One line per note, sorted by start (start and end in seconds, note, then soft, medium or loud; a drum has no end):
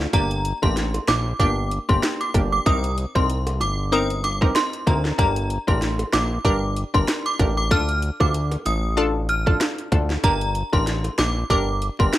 0.00 0.11 A3 medium
0.00 0.11 D4 medium
0.00 0.11 F4 medium
0.00 snare medium
0.13 0.53 G1 loud
0.13 0.28 A#3 loud
0.13 0.29 D4 medium
0.13 0.29 G4 loud
0.13 0.40 A#5 loud
0.13 kick loud
0.13 closed hi-hat medium
0.31 closed hi-hat medium
0.45 closed hi-hat medium
0.62 0.99 A1 medium
0.62 0.74 A#3 medium
0.62 0.74 D4 medium
0.62 0.75 G4 medium
0.62 0.74 C6 medium
0.62 kick medium
0.62 high bongo medium
0.77 snare medium
0.77 closed hi-hat medium
0.94 closed hi-hat medium
0.94 high bongo medium
1.08 1.34 A#1 medium
1.08 1.23 D6 medium
1.08 cross-stick medium
1.08 snare loud
1.08 closed hi-hat medium
1.08 low bongo medium
1.40 1.79 G1 loud
1.40 1.55 A#3 loud
1.40 1.55 D4 medium
1.40 1.55 G4 loud
1.40 1.55 D6 medium
1.40 kick medium
1.40 closed hi-hat medium
1.71 closed hi-hat medium
1.89 2.00 G1 medium
1.89 2.31 A#3 medium
1.89 2.31 D4 medium
1.89 2.31 G4 medium
1.89 2.01 C6 medium
1.89 kick medium
2.03 cross-stick medium
2.03 snare loud
2.03 closed hi-hat medium
2.21 2.32 D6 medium
2.21 closed hi-hat medium
2.34 2.60 G1 medium
2.34 2.64 A#3 medium
2.34 2.64 D4 medium
2.34 2.64 G4 medium
2.34 kick loud
2.34 closed hi-hat medium
2.34 high bongo medium
2.34 low bongo medium
2.52 2.64 D6 medium
2.66 3.06 C2 loud
2.66 2.81 C4 loud
2.66 2.81 D#4 medium
2.66 2.81 A#4 loud
2.66 2.93 D#6 loud
2.66 kick loud
2.66 closed hi-hat medium
2.84 closed hi-hat medium
2.98 closed hi-hat medium
3.15 3.62 C2 loud
3.15 3.27 C4 medium
3.15 3.27 D#4 medium
3.15 3.27 A#4 medium
3.15 3.27 C6 medium
3.15 kick medium
3.15 high bongo medium
3.30 closed hi-hat medium
3.47 closed hi-hat medium
3.47 high bongo medium
3.60 4.52 G1 loud
3.60 3.76 D6 medium
3.60 closed hi-hat medium
3.60 low bongo medium
3.92 4.07 C4 loud
3.92 4.07 D#4 medium
3.92 4.08 A#4 loud
3.92 4.07 D#6 medium
3.92 closed hi-hat medium
4.10 closed hi-hat soft
4.24 4.39 D6 medium
4.24 closed hi-hat medium
4.24 high bongo medium
4.41 4.84 C4 medium
4.41 4.84 D#4 medium
4.41 4.84 A#4 medium
4.41 kick loud
4.41 cross-stick loud
4.55 4.71 C6 medium
4.55 cross-stick medium
4.55 snare loud
4.55 closed hi-hat medium
4.55 high bongo medium
4.73 closed hi-hat medium
4.87 5.12 D2 medium
4.87 5.16 C4 medium
4.87 5.16 D#4 medium
4.87 5.17 A#4 medium
4.87 5.02 A#5 medium
4.87 kick loud
4.87 closed hi-hat medium
4.87 high bongo medium
4.87 low bongo medium
5.05 snare medium
5.18 5.58 G1 loud
5.18 5.33 D4 medium
5.18 5.34 G4 medium
5.18 5.34 A#4 loud
5.18 5.45 A#5 loud
5.18 kick loud
5.18 closed hi-hat medium
5.36 closed hi-hat medium
5.50 closed hi-hat medium
5.67 6.04 A1 medium
5.67 5.79 D4 medium
5.67 5.80 G4 medium
5.67 5.80 A#4 medium
5.67 5.80 C6 medium
5.67 kick medium
5.67 high bongo medium
5.82 snare medium
5.82 closed hi-hat medium
5.99 closed hi-hat medium
5.99 high bongo medium
6.13 6.39 A#1 loud
6.13 6.28 D6 medium
6.13 cross-stick medium
6.13 snare loud
6.13 closed hi-hat medium
6.13 low bongo medium
6.45 6.84 G1 loud
6.45 6.60 D4 loud
6.45 6.60 G4 medium
6.45 6.60 A#4 loud
6.45 6.60 D6 medium
6.45 kick medium
6.45 closed hi-hat medium
6.76 closed hi-hat medium
6.94 7.06 G1 medium
6.94 7.36 D4 medium
6.94 7.36 G4 medium
6.94 7.37 A#4 medium
6.94 7.06 C6 medium
6.94 kick medium
7.08 cross-stick medium
7.08 snare loud
7.08 closed hi-hat medium
7.26 7.38 D6 medium
7.26 closed hi-hat medium
7.39 7.73 A1 loud
7.39 7.69 D4 medium
7.39 7.69 G4 medium
7.39 7.69 A#4 medium
7.39 kick loud
7.39 closed hi-hat medium
7.39 high bongo medium
7.39 low bongo medium
7.57 7.69 D6 medium
7.71 8.11 D2 loud
7.71 7.86 D4 medium
7.71 7.86 F4 medium
7.71 7.86 A4 loud
7.71 7.98 F6 loud
7.71 kick loud
7.71 closed hi-hat medium
7.89 closed hi-hat medium
8.02 closed hi-hat medium
8.20 8.57 D2 loud
8.20 8.32 D4 medium
8.20 8.32 F4 medium
8.20 8.32 A4 medium
8.20 8.32 D6 medium
8.20 kick medium
8.20 high bongo medium
8.34 closed hi-hat medium
8.52 closed hi-hat medium
8.52 high bongo medium
8.65 9.57 A1 loud
8.65 8.81 D#6 medium
8.65 closed hi-hat medium
8.65 low bongo medium
8.97 9.12 D4 loud
8.97 9.13 F4 loud
8.97 9.13 A4 loud
8.97 closed hi-hat medium
9.29 9.44 F6 medium
9.29 closed hi-hat medium
9.46 9.89 D4 medium
9.46 9.89 F4 medium
9.46 9.89 A4 medium
9.46 kick loud
9.60 cross-stick medium
9.60 snare loud
9.60 closed hi-hat medium
9.78 closed hi-hat medium
9.92 10.17 D2 medium
9.92 10.21 D4 medium
9.92 10.22 F4 medium
9.92 10.22 A4 medium
9.92 kick loud
9.92 closed hi-hat medium
9.92 high bongo medium
9.92 low bongo medium
10.10 snare medium
10.24 10.63 G1 loud
10.24 10.39 D4 loud
10.24 10.39 G4 medium
10.24 10.39 A#4 loud
10.24 10.51 A#5 loud
10.24 kick loud
10.24 closed hi-hat medium
10.41 closed hi-hat medium
10.55 closed hi-hat medium
10.73 11.10 A1 medium
10.73 10.85 D4 medium
10.73 10.85 G4 medium
10.73 10.85 A#4 medium
10.73 10.85 C6 medium
10.73 kick medium
10.73 high bongo medium
10.87 snare medium
10.87 closed hi-hat medium
11.04 closed hi-hat medium
11.04 high bongo medium
11.18 11.44 A#1 medium
11.18 11.34 D6 medium
11.18 cross-stick medium
11.18 snare loud
11.18 closed hi-hat medium
11.18 low bongo medium
11.50 11.90 G1 medium
11.50 11.65 D4 loud
11.50 11.65 G4 medium
11.50 11.65 A#4 loud
11.50 11.65 D6 medium
11.50 kick medium
11.50 closed hi-hat medium
11.82 closed hi-hat medium
11.99 12.11 G1 medium
11.99 12.18 D4 medium
11.99 12.18 G4 medium
11.99 12.18 A#4 medium
11.99 12.11 C6 medium
11.99 kick loud
12.13 cross-stick medium
12.13 snare loud
12.13 closed hi-hat medium